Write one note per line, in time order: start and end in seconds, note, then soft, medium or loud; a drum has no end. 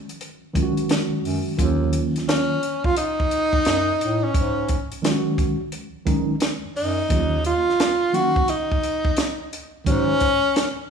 0.09 closed hi-hat medium
0.21 closed hi-hat medium
0.54 1.53 D#3 medium
0.54 1.53 F#3 medium
0.54 1.54 G#3 medium
0.54 1.54 C#4 medium
0.54 0.64 F4 medium
0.54 kick medium
0.54 closed hi-hat medium
0.63 1.58 F#4 medium
0.77 closed hi-hat soft
0.89 snare loud
0.89 closed hi-hat medium
1.24 1.41 F#2 medium
1.24 open hi-hat medium
1.57 2.01 D#2 medium
1.57 2.57 D#3 medium
1.57 2.57 F#3 medium
1.57 2.57 A#3 medium
1.57 2.58 C#4 medium
1.57 2.58 F4 medium
1.57 kick loud
1.57 closed hi-hat medium
1.93 closed hi-hat medium
2.16 snare soft
2.16 closed hi-hat medium
2.28 2.87 C#4 medium
2.28 snare loud
2.28 closed hi-hat medium
2.63 closed hi-hat medium
2.84 2.97 F4 medium
2.84 kick medium
2.96 4.25 D#4 loud
2.96 closed hi-hat medium
3.20 kick medium
3.31 closed hi-hat medium
3.53 kick medium
3.65 3.92 F#2 medium
3.65 snare loud
3.65 closed hi-hat medium
4.00 4.26 A2 medium
4.00 closed hi-hat medium
4.24 4.92 C#4 medium
4.34 4.77 G#2 medium
4.34 kick loud
4.34 closed hi-hat medium
4.68 kick medium
4.68 closed hi-hat medium
4.92 closed hi-hat soft
5.02 5.55 D#3 medium
5.02 5.56 F#3 medium
5.02 5.56 G#3 medium
5.02 5.56 C#4 medium
5.02 5.12 F4 medium
5.02 snare loud
5.02 closed hi-hat medium
5.11 5.60 F#4 medium
5.38 kick medium
5.38 closed hi-hat medium
5.72 closed hi-hat medium
6.05 6.33 D#3 medium
6.05 6.34 F#3 medium
6.05 6.34 G#3 medium
6.05 6.34 C#4 medium
6.05 6.35 D#4 medium
6.05 kick medium
6.05 closed hi-hat medium
6.40 snare loud
6.40 closed hi-hat medium
6.64 6.68 F#2 soft
6.76 7.02 F#2 medium
6.76 7.41 D#4 medium
6.76 open hi-hat medium
7.09 7.53 D#2 medium
7.09 7.37 D#3 medium
7.09 7.37 F#3 medium
7.09 7.38 A#3 medium
7.09 7.38 C#4 medium
7.09 7.38 F4 medium
7.09 kick loud
7.09 closed hi-hat medium
7.44 8.16 F4 medium
7.44 closed hi-hat medium
7.69 snare soft
7.80 snare loud
7.80 closed hi-hat medium
8.12 8.40 D#3 medium
8.12 8.41 F#3 medium
8.12 8.41 A#3 medium
8.12 8.41 C#4 medium
8.12 8.42 D#4 medium
8.12 8.51 F#4 medium
8.12 closed hi-hat medium
8.36 kick medium
8.48 9.52 D#4 medium
8.48 closed hi-hat medium
8.72 kick medium
8.83 closed hi-hat medium
9.05 kick medium
9.17 snare loud
9.17 closed hi-hat medium
9.53 closed hi-hat medium
9.85 10.29 G#2 loud
9.85 10.13 D#3 medium
9.85 10.13 F#3 medium
9.85 10.13 G#3 soft
9.85 10.14 C#4 soft
9.85 10.86 C#4 loud
9.85 10.14 F#4 medium
9.85 kick loud
9.85 closed hi-hat medium
10.20 kick medium
10.20 closed hi-hat medium
10.56 snare loud
10.56 closed hi-hat medium